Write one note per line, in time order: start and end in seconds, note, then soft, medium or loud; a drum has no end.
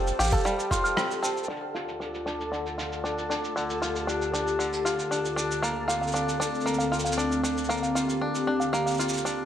0.00 0.12 F1 loud
0.00 0.44 G3 medium
0.00 0.95 C4 medium
0.00 0.70 F4 medium
0.00 1.45 G4 medium
0.00 0.19 A4 medium
0.00 1.48 A4 medium
0.00 1.45 C5 medium
0.00 1.47 G5 medium
0.00 1.45 A5 medium
0.00 1.47 A5 medium
0.07 shaker soft
0.19 0.36 A1 medium
0.19 0.32 G4 medium
0.19 0.31 F5 medium
0.19 shaker medium
0.23 shaker medium
0.27 shaker soft
0.30 1.54 A4 medium
0.30 0.44 F5 medium
0.30 kick medium
0.30 shaker soft
0.33 shaker soft
0.37 shaker soft
0.40 shaker soft
0.43 1.48 G3 medium
0.43 0.58 F5 medium
0.43 shaker soft
0.46 shaker soft
0.59 shaker soft
0.71 1.74 F4 medium
0.71 0.84 C6 medium
0.71 kick medium
0.71 shaker medium
0.84 0.91 F6 medium
0.84 shaker soft
0.97 1.21 C4 medium
0.97 cross-stick medium
0.97 shaker soft
1.11 shaker soft
1.23 1.54 C4 medium
1.23 1.35 A5 medium
1.23 shaker medium
1.37 shaker soft
1.43 shaker soft
1.48 5.58 D2 medium
1.48 2.51 D3 medium
1.48 9.45 D3 medium
1.48 5.59 F4 medium
1.48 3.54 A4 medium
1.48 9.45 A4 medium
1.48 9.45 A5 medium
1.48 shaker soft
1.56 shaker soft
1.74 2.78 F4 medium
1.74 shaker medium
1.88 shaker soft
2.00 2.26 D4 medium
2.00 shaker soft
2.14 shaker soft
2.26 2.78 D4 medium
2.26 shaker medium
2.40 shaker soft
2.52 3.55 D3 medium
2.52 shaker soft
2.66 shaker soft
2.78 3.81 F4 soft
2.78 shaker medium
2.92 shaker soft
3.04 3.30 D4 medium
3.04 shaker soft
3.18 shaker soft
3.30 4.07 D4 medium
3.30 shaker medium
3.44 shaker soft
3.56 4.58 D3 medium
3.56 5.61 G4 medium
3.56 shaker soft
3.70 shaker soft
3.82 4.85 F4 medium
3.82 shaker medium
3.96 shaker soft
4.07 4.33 D4 medium
4.07 shaker soft
4.21 shaker soft
4.33 5.11 D4 medium
4.33 shaker medium
4.47 shaker soft
4.59 5.62 D3 medium
4.59 shaker soft
4.73 shaker soft
4.85 5.87 F4 medium
4.85 shaker medium
4.99 shaker soft
5.11 5.36 D4 medium
5.11 shaker soft
5.25 shaker soft
5.36 6.13 D4 medium
5.36 shaker medium
5.51 shaker soft
5.62 9.45 D2 medium
5.62 6.64 A#3 medium
5.62 9.45 C4 medium
5.62 7.67 A4 medium
5.62 shaker soft
5.88 6.92 F4 medium
5.88 6.00 F5 medium
5.88 shaker medium
6.02 6.13 F5 medium
6.02 shaker soft
6.07 shaker soft
6.12 6.39 D4 medium
6.12 6.27 F5 medium
6.12 shaker soft
6.16 shaker soft
6.29 shaker soft
6.40 7.17 D4 medium
6.40 shaker medium
6.54 shaker soft
6.61 shaker soft
6.66 7.68 A#3 medium
6.66 shaker soft
6.73 shaker soft
6.79 6.91 F5 medium
6.79 shaker soft
6.92 7.95 F4 medium
6.92 7.04 F5 medium
6.92 shaker soft
6.99 shaker soft
7.05 7.17 F5 medium
7.05 shaker medium
7.12 shaker medium
7.18 7.43 D4 medium
7.18 shaker soft
7.32 shaker soft
7.43 8.21 D4 medium
7.43 shaker medium
7.57 shaker soft
7.64 shaker soft
7.69 8.72 A#3 medium
7.69 9.45 G4 medium
7.69 7.82 F5 medium
7.69 shaker soft
7.77 shaker soft
7.83 7.94 F5 medium
7.83 shaker soft
7.95 8.99 F4 medium
7.95 8.08 F5 medium
7.95 shaker medium
8.09 shaker soft
8.21 8.47 D4 medium
8.35 shaker soft
8.47 9.25 D4 medium
8.60 8.71 F5 medium
8.60 shaker soft
8.73 9.45 A#3 medium
8.73 8.85 F5 medium
8.73 shaker soft
8.86 8.98 F5 medium
8.86 shaker soft
8.90 shaker soft
8.94 shaker soft
8.97 9.45 F4 medium
8.97 shaker soft
9.00 shaker medium
9.09 shaker medium
9.13 shaker soft
9.17 shaker soft
9.25 9.45 D4 medium
9.25 shaker soft